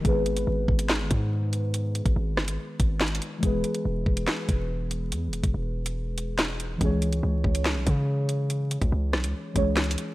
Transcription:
<<
  \new Staff \with { instrumentName = "Synth keys" } { \time 4/4 \key gis \minor \tempo 4 = 142 <dis gis b gis' b'>1~ | <dis gis b gis' b'>1 | <e gis b gis' b'>1~ | <e gis b gis' b'>1 |
<e gis cis' gis' cis''>1~ | <e gis cis' gis' cis''>2~ <e gis cis' gis' cis''>8 <e gis cis' gis' cis''>4. | }
  \new Staff \with { instrumentName = "808-style bass" } { \clef bass \time 4/4 \key gis \minor gis,,4 gis,,8 gis,,8. g,,16 gis,4.~ | gis,8. gis,,16 gis,,8 g,,16 gis,,16 r8 gis,,4 r8 | e,,8 r8 e,,8 e,,8 r8 e,,4. | e,16. e,,16. e,,16 e,,2. |
cis,4 cis,8 cis,8. b,,16 cis4.~ | cis8. cis,16 cis,8 b,,16 cis,16 r8 cis,4 r8 | }
  \new DrumStaff \with { instrumentName = "Drums" } \drummode { \time 4/4 <hh bd>8 hh16 hh16 r8 bd16 hh16 <hc sn>8 <hh bd>8 r8 hh8 | hh8 hh16 <hh bd>16 r8 <ss sn>16 hh16 r8 <hh bd>8 \tuplet 3/2 { <hc hh sn>16 hh16 hh16 hh16 r16 r16 } | <hh bd>8 hh16 hh16 r8 bd16 hh16 <hc sn>8 <hh bd>8 r8 hh8 | hh8 hh16 <hh bd>16 r8. hh16 r8 hh8 <hc hh sn>8 hh8 |
<hh bd>8 hh16 hh16 r8 bd16 hh16 <hc sn>8 <hh bd>8 r8 hh8 | hh8 hh16 <hh bd>16 r8 <ss sn>16 hh16 r8 <hh bd>8 \tuplet 3/2 { <hc hh sn>16 hh16 hh16 hh16 r16 r16 } | }
>>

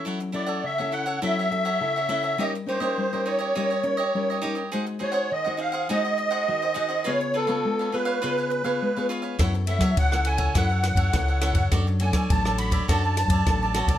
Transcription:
<<
  \new Staff \with { instrumentName = "Accordion" } { \time 4/4 \key fis \minor \tempo 4 = 103 r8 d''8 e''8 fis''8 e''2 | dis''8 bis'4 cis''2 r8 | r8 cis''8 dis''8 eis''8 dis''2 | cis''8 a'4 b'2 r8 |
r8 e''8 fis''8 gis''8 fis''2 | r8 gis''8 a''8 b''8 a''2 | }
  \new Staff \with { instrumentName = "Cavaquinho" } { \time 4/4 \key fis \minor <e' a' cis'' fis''>16 r16 <e' a' cis'' fis''>16 <a' cis'' fis''>8 <a' cis'' fis''>16 <e' a' cis'' fis''>16 <a' cis'' fis''>16 <e' a' cis'' fis''>16 <a' cis'' fis''>16 r16 <a' cis'' fis''>8 <a' cis'' fis''>16 <e' a' cis'' fis''>16 <a' cis'' fis''>16 | <dis' g' cis'' dis''>16 r16 <dis' g' cis'' dis''>16 <g' cis'' dis''>8 <g' cis'' dis''>16 <dis' g' cis'' dis''>16 <g' cis'' dis''>16 <dis' g' cis'' dis''>16 <g' cis'' dis''>16 r16 <g' cis'' dis''>8 <g' cis'' dis''>16 <dis' g' cis'' dis''>16 <g' cis'' dis''>16 | <dis' gis' bis' fis''>16 r16 <dis' gis' bis' fis''>16 <gis' bis' fis''>8 <gis' bis' fis''>16 <dis' gis' bis' fis''>16 <gis' bis' fis''>16 <dis' gis' bis' fis''>16 <gis' bis' fis''>16 r16 <gis' bis' fis''>8 <gis' bis' fis''>16 <dis' gis' bis' fis''>16 <gis' bis' fis''>16 | <eis' b' cis'' eis''>16 r16 <eis' b' cis'' eis''>16 <b' cis'' eis''>8 <b' cis'' eis''>16 <eis' b' cis'' eis''>16 <b' cis'' eis''>16 <eis' b' cis'' eis''>16 <b' cis'' eis''>16 r16 <b' cis'' eis''>8 <b' cis'' eis''>16 <eis' b' cis'' eis''>16 <b' cis'' eis''>16 |
<e' a' cis'' fis''>16 r16 <e' a' cis'' fis''>16 <a' cis'' fis''>8 <a' cis'' fis''>16 <e' a' cis'' fis''>16 <a' cis'' fis''>16 <e' a' cis'' fis''>16 <a' cis'' fis''>16 r16 <a' cis'' fis''>8 <a' cis'' fis''>16 <e' a' cis'' fis''>16 <a' cis'' fis''>16 | <fis' a' cis'' d''>16 r16 <fis' a' cis'' d''>16 <a' cis'' d''>8 <a' cis'' d''>16 <fis' a' cis'' d''>16 <a' cis'' d''>16 <fis' a' cis'' d''>16 <a' cis''>16 r16 <a' cis'' d''>8 <a' cis'' d''>16 <fis' a' cis'' d''>16 <a' cis'' d''>16 | }
  \new Staff \with { instrumentName = "Nylon-string guitar" } { \time 4/4 \key fis \minor << { <cis' e' a'>8 <cis' e' a'>8 r16 <cis' e' a'>8. <cis' e' a'>8 <cis' e' a'>16 r16 <cis' e' a'>16 r16 <cis' e' a'>8 | <cis' dis' ais'>16 r16 <cis' dis' ais'>16 <cis' dis' ais'>8 <cis' dis' ais'>8. <cis' dis' ais'>16 r16 <cis' dis' ais'>16 r16 <cis' dis' ais'>8 <cis' dis' ais'>16 r16 | <dis' fis' bis'>8 <dis' fis' bis'>8 r16 <dis' fis' bis'>8. <dis' fis' bis'>4 <dis' fis' bis'>16 r16 <dis' fis' bis'>16 r16 | <b eis' gis'>8. <b eis'>8. <b eis' gis'>8 <b eis' gis'>8. <b eis' gis'>8 <b eis' gis'>8. |
<e' a' cis''>8 <e' a' cis''>8 r16 <e' a' cis''>8. <e' a' cis''>4 <e' a' cis''>8 <e' a' cis''>16 r16 | <d' a' cis''>8 <d' a' cis''>8. <d' a' cis''>8. <d' a' cis''>8. r16 <d' a' cis''>16 r16 <d' a' cis''>16 r16 | } \\ { fis4 cis4 fis4 cis4 | g4 g4 g4 g4 | gis4 dis4 gis4 dis4 | cis4 gis4 cis4 gis4 |
fis4 cis4 fis4 cis4 | fis4 fis4 fis4 fis4 | } >> }
  \new Staff \with { instrumentName = "Fingered electric bass" } { \clef bass \time 4/4 \key fis \minor r1 | r1 | r1 | r1 |
fis,8. fis16 cis,4 fis,8. fis,16 cis,8. fis,16 | fis,8. fis16 a,,4 fis,8. fis,16 a,,8. bis,,16 | }
  \new DrumStaff \with { instrumentName = "Drums" } \drummode { \time 4/4 r4 r4 r4 r4 | r4 r4 r4 r4 | r4 r4 r4 r4 | r4 r4 r4 r4 |
<bd cymr ss>8 cymr16 <bd cymr ss>16 <bd cymr>16 ss16 cymr16 <bd cymr>16 <bd cymr ss>8 <cymr ss>16 <bd cymr>16 <bd cymr ss>8 <cymr ss>16 <bd cymr>16 | <bd cymr ss>8 cymr16 <bd cymr ss>16 <bd cymr>16 ss16 cymr16 <bd cymr>16 <bd cymr ss>8 <cymr ss>16 <bd cymr>16 <bd cymr ss>8 <cymr ss>16 <bd cymr>16 | }
>>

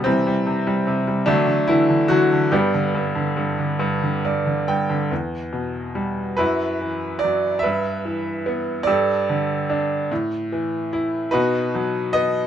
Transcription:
<<
  \new Staff \with { instrumentName = "Upright piano" } { \time 6/8 \key g \major \tempo 4. = 48 << { r2. | r2 d''8 g''8 | \key e \minor r2. | r2. |
r2. | } \\ { c'4. d'8 e'8 fis'8 | g'2~ g'8 r8 | r4. b'4 d''8 | e''4. d''4 r8 |
r4. b'4 dis''8 | } >> }
  \new Staff \with { instrumentName = "Upright piano" } { \clef bass \time 6/8 \key g \major << { <c e g>4. <fis a>8 e8 fis8 | <g b d'>2~ <g b d'>8 r8 | \key e \minor r4. <e' fis'>4. | b'4. <g' a'>4. |
r4. <dis' fis'>4. | } \\ { r16 g16 c16 g16 c16 g16 d16 d16 d16 d16 d16 d16 | g,16 d16 g,16 d16 g,16 d16 g,16 d16 g,16 d16 g,16 d16 | e,8 b,8 g8 fis,8 e8 fis8 | g,8 e8 b8 g,8 d8 d'8 |
a,8 e8 e'8 b,8 fis8 b8 | } >> }
>>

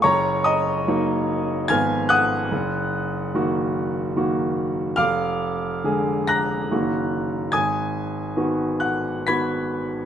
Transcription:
<<
  \new Staff \with { instrumentName = "Upright piano" } { \time 3/4 \key ees \minor \tempo 4 = 73 <des'' bes'' des'''>8 <ees'' bes'' ees'''>4. <aes'' f''' aes'''>8 <ges'' ees''' ges'''>8~ | <ges'' ees''' ges'''>2. | <f'' d''' f'''>4. <bes'' ges''' bes'''>4. | <aes'' ees''' aes'''>4. <ges'' ges'''>8 <ces''' aes''' ces''''>4 | }
  \new Staff \with { instrumentName = "Upright piano" } { \time 3/4 \key ees \minor ges,,4 <ges bes ees'>4 <aes,, f ces' f'>4 | ges,,4 <ees bes ges'>4 <ees bes ges'>4 | f,,4 <d aes aes'>4 <ges,, ees bes ges'>4 | aes,,4 <ees ces' ges'>4 <ees ces' ges'>4 | }
>>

